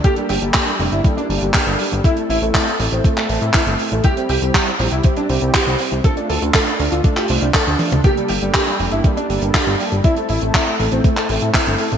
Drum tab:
HH |xxoxxxoxxxoxxxox|xxoxxxoxxxoxxxox|xxoxxxoxxxoxxxox|xxoxxxoxxxoxxxox|
CP |----x-------x---|----x----x--x---|----x-------x---|----x----x--x---|
T1 |----------------|----------------|----------------|--------------o-|
T2 |----------------|----------------|----------------|---------------o|
BD |o---o---o---o---|o---o---o---o---|o---o---o---o---|o---o---o---o---|

HH |xxoxxxoxxxoxxxox|xxoxxxoxxxoxxxox|
CP |----x-------x---|----x----x--x---|
T1 |----------------|----------------|
T2 |----------------|----------------|
BD |o---o---o---o---|o---o---o---o---|